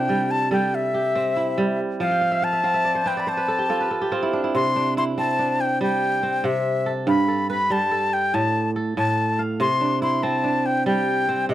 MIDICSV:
0, 0, Header, 1, 3, 480
1, 0, Start_track
1, 0, Key_signature, 0, "major"
1, 0, Tempo, 422238
1, 2277, Time_signature, 12, 3, 24, 8
1, 13121, End_track
2, 0, Start_track
2, 0, Title_t, "Flute"
2, 0, Program_c, 0, 73
2, 0, Note_on_c, 0, 79, 84
2, 353, Note_on_c, 0, 81, 88
2, 370, Note_off_c, 0, 79, 0
2, 592, Note_off_c, 0, 81, 0
2, 597, Note_on_c, 0, 79, 76
2, 851, Note_on_c, 0, 76, 88
2, 868, Note_off_c, 0, 79, 0
2, 2045, Note_off_c, 0, 76, 0
2, 2287, Note_on_c, 0, 77, 82
2, 2774, Note_on_c, 0, 81, 88
2, 2791, Note_off_c, 0, 77, 0
2, 3494, Note_on_c, 0, 79, 76
2, 3511, Note_off_c, 0, 81, 0
2, 3635, Note_on_c, 0, 83, 59
2, 3652, Note_off_c, 0, 79, 0
2, 3736, Note_on_c, 0, 81, 73
2, 3753, Note_off_c, 0, 83, 0
2, 4691, Note_off_c, 0, 81, 0
2, 5175, Note_on_c, 0, 84, 98
2, 5617, Note_off_c, 0, 84, 0
2, 5661, Note_on_c, 0, 84, 80
2, 5729, Note_off_c, 0, 84, 0
2, 5897, Note_on_c, 0, 81, 87
2, 6373, Note_on_c, 0, 79, 77
2, 6390, Note_off_c, 0, 81, 0
2, 6609, Note_off_c, 0, 79, 0
2, 6621, Note_on_c, 0, 79, 92
2, 7336, Note_on_c, 0, 76, 83
2, 7353, Note_off_c, 0, 79, 0
2, 7870, Note_off_c, 0, 76, 0
2, 8054, Note_on_c, 0, 83, 82
2, 8496, Note_off_c, 0, 83, 0
2, 8531, Note_on_c, 0, 83, 88
2, 8775, Note_on_c, 0, 81, 90
2, 8792, Note_off_c, 0, 83, 0
2, 9246, Note_on_c, 0, 79, 84
2, 9263, Note_off_c, 0, 81, 0
2, 9484, Note_on_c, 0, 81, 89
2, 9501, Note_off_c, 0, 79, 0
2, 9894, Note_off_c, 0, 81, 0
2, 10211, Note_on_c, 0, 81, 88
2, 10706, Note_off_c, 0, 81, 0
2, 10923, Note_on_c, 0, 84, 94
2, 11365, Note_off_c, 0, 84, 0
2, 11400, Note_on_c, 0, 84, 79
2, 11629, Note_on_c, 0, 81, 84
2, 11646, Note_off_c, 0, 84, 0
2, 12116, Note_on_c, 0, 79, 77
2, 12133, Note_off_c, 0, 81, 0
2, 12350, Note_off_c, 0, 79, 0
2, 12357, Note_on_c, 0, 79, 84
2, 13025, Note_off_c, 0, 79, 0
2, 13076, Note_on_c, 0, 76, 76
2, 13121, Note_off_c, 0, 76, 0
2, 13121, End_track
3, 0, Start_track
3, 0, Title_t, "Kora"
3, 0, Program_c, 1, 46
3, 0, Note_on_c, 1, 48, 75
3, 0, Note_on_c, 1, 60, 75
3, 0, Note_on_c, 1, 62, 61
3, 0, Note_on_c, 1, 64, 65
3, 0, Note_on_c, 1, 65, 60
3, 0, Note_on_c, 1, 67, 65
3, 0, Note_on_c, 1, 69, 68
3, 103, Note_on_c, 1, 55, 66
3, 397, Note_off_c, 1, 69, 0
3, 567, Note_off_c, 1, 55, 0
3, 580, Note_on_c, 1, 55, 67
3, 584, Note_on_c, 1, 69, 53
3, 628, Note_off_c, 1, 67, 0
3, 859, Note_off_c, 1, 65, 0
3, 942, Note_off_c, 1, 60, 0
3, 1047, Note_off_c, 1, 64, 0
3, 1072, Note_on_c, 1, 67, 55
3, 1312, Note_on_c, 1, 60, 69
3, 1550, Note_on_c, 1, 64, 57
3, 1775, Note_off_c, 1, 62, 0
3, 1779, Note_off_c, 1, 55, 0
3, 1793, Note_on_c, 1, 55, 80
3, 2044, Note_off_c, 1, 48, 0
3, 2082, Note_off_c, 1, 69, 0
3, 2275, Note_on_c, 1, 53, 73
3, 2334, Note_off_c, 1, 55, 0
3, 2343, Note_off_c, 1, 64, 0
3, 2395, Note_on_c, 1, 79, 61
3, 2515, Note_on_c, 1, 77, 60
3, 2631, Note_on_c, 1, 76, 60
3, 2678, Note_off_c, 1, 67, 0
3, 2749, Note_off_c, 1, 77, 0
3, 2754, Note_on_c, 1, 77, 69
3, 2870, Note_off_c, 1, 76, 0
3, 2875, Note_on_c, 1, 76, 56
3, 2992, Note_off_c, 1, 60, 0
3, 2996, Note_off_c, 1, 77, 0
3, 2996, Note_on_c, 1, 60, 66
3, 3000, Note_on_c, 1, 77, 65
3, 3110, Note_off_c, 1, 76, 0
3, 3114, Note_on_c, 1, 76, 69
3, 3237, Note_on_c, 1, 74, 58
3, 3354, Note_on_c, 1, 72, 58
3, 3455, Note_off_c, 1, 79, 0
3, 3470, Note_off_c, 1, 60, 0
3, 3475, Note_on_c, 1, 60, 66
3, 3476, Note_on_c, 1, 71, 59
3, 3599, Note_off_c, 1, 74, 0
3, 3603, Note_on_c, 1, 74, 66
3, 3712, Note_off_c, 1, 72, 0
3, 3717, Note_on_c, 1, 72, 59
3, 3785, Note_off_c, 1, 71, 0
3, 3834, Note_on_c, 1, 71, 65
3, 3958, Note_on_c, 1, 69, 60
3, 4076, Note_on_c, 1, 67, 58
3, 4135, Note_off_c, 1, 77, 0
3, 4200, Note_off_c, 1, 69, 0
3, 4200, Note_on_c, 1, 65, 65
3, 4205, Note_on_c, 1, 69, 62
3, 4268, Note_off_c, 1, 76, 0
3, 4321, Note_off_c, 1, 71, 0
3, 4325, Note_on_c, 1, 71, 65
3, 4394, Note_off_c, 1, 60, 0
3, 4394, Note_off_c, 1, 72, 0
3, 4438, Note_off_c, 1, 69, 0
3, 4443, Note_on_c, 1, 69, 60
3, 4559, Note_off_c, 1, 67, 0
3, 4564, Note_on_c, 1, 67, 61
3, 4678, Note_off_c, 1, 65, 0
3, 4681, Note_on_c, 1, 60, 79
3, 4683, Note_on_c, 1, 65, 68
3, 4749, Note_off_c, 1, 71, 0
3, 4803, Note_on_c, 1, 64, 65
3, 4863, Note_off_c, 1, 74, 0
3, 4925, Note_on_c, 1, 62, 59
3, 4935, Note_off_c, 1, 53, 0
3, 5042, Note_off_c, 1, 64, 0
3, 5046, Note_on_c, 1, 64, 61
3, 5114, Note_off_c, 1, 65, 0
3, 5168, Note_on_c, 1, 48, 70
3, 5406, Note_off_c, 1, 62, 0
3, 5411, Note_on_c, 1, 62, 58
3, 5647, Note_off_c, 1, 64, 0
3, 5652, Note_on_c, 1, 64, 65
3, 5880, Note_off_c, 1, 60, 0
3, 5885, Note_on_c, 1, 60, 70
3, 5941, Note_off_c, 1, 69, 0
3, 6122, Note_off_c, 1, 62, 0
3, 6126, Note_on_c, 1, 62, 57
3, 6169, Note_off_c, 1, 67, 0
3, 6601, Note_on_c, 1, 55, 78
3, 7077, Note_off_c, 1, 60, 0
3, 7082, Note_on_c, 1, 60, 59
3, 7305, Note_off_c, 1, 48, 0
3, 7319, Note_on_c, 1, 48, 74
3, 7433, Note_off_c, 1, 64, 0
3, 7800, Note_on_c, 1, 69, 66
3, 8035, Note_on_c, 1, 43, 83
3, 8036, Note_off_c, 1, 62, 0
3, 8102, Note_off_c, 1, 48, 0
3, 8102, Note_off_c, 1, 55, 0
3, 8273, Note_off_c, 1, 69, 0
3, 8277, Note_on_c, 1, 69, 54
3, 8522, Note_on_c, 1, 71, 70
3, 8591, Note_off_c, 1, 60, 0
3, 8756, Note_on_c, 1, 55, 71
3, 8991, Note_off_c, 1, 69, 0
3, 8995, Note_on_c, 1, 69, 58
3, 9480, Note_on_c, 1, 45, 78
3, 9539, Note_off_c, 1, 43, 0
3, 9539, Note_off_c, 1, 55, 0
3, 9920, Note_off_c, 1, 71, 0
3, 9953, Note_off_c, 1, 69, 0
3, 9957, Note_on_c, 1, 69, 62
3, 10185, Note_off_c, 1, 45, 0
3, 10199, Note_on_c, 1, 45, 71
3, 10674, Note_on_c, 1, 77, 63
3, 10910, Note_on_c, 1, 48, 81
3, 10974, Note_off_c, 1, 45, 0
3, 11150, Note_on_c, 1, 62, 58
3, 11389, Note_on_c, 1, 64, 65
3, 11455, Note_off_c, 1, 69, 0
3, 11457, Note_off_c, 1, 77, 0
3, 11632, Note_on_c, 1, 60, 76
3, 11862, Note_off_c, 1, 62, 0
3, 11867, Note_on_c, 1, 62, 56
3, 12347, Note_on_c, 1, 55, 82
3, 12826, Note_off_c, 1, 60, 0
3, 12831, Note_on_c, 1, 60, 65
3, 13049, Note_off_c, 1, 48, 0
3, 13062, Note_on_c, 1, 48, 82
3, 13121, Note_off_c, 1, 48, 0
3, 13121, Note_off_c, 1, 55, 0
3, 13121, Note_off_c, 1, 60, 0
3, 13121, Note_off_c, 1, 62, 0
3, 13121, Note_off_c, 1, 64, 0
3, 13121, End_track
0, 0, End_of_file